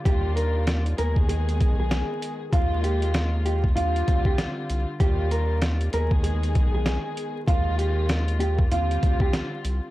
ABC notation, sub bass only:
X:1
M:4/4
L:1/16
Q:"Swing 16ths" 1/4=97
K:Eb
V:1 name="Sub bass" clef=bass
E,,6 E,,4 _C,,3 z3 | E,,8 E,,2 D,,2 z2 C,, z | E,,6 E,,4 _C,,3 z3 | E,,8 E,,2 D,,2 z2 C,, z |]